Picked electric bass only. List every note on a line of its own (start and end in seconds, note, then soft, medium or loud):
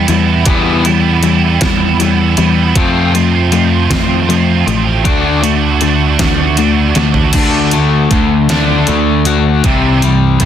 0.08 0.45 E2 medium
0.46 1.57 E2 medium
1.61 2.34 E2 medium
2.38 2.74 E2 medium
2.76 3.87 F2 medium
3.90 4.63 F2 medium
4.67 5.03 A1 medium
5.05 6.16 D2 medium
6.19 6.92 D2 medium
6.97 7.33 D2 medium
7.34 8.07 D2 medium
8.11 8.84 D2 medium
8.88 9.61 D2 medium
9.64 10.37 C2 medium
10.40 10.45 C2 medium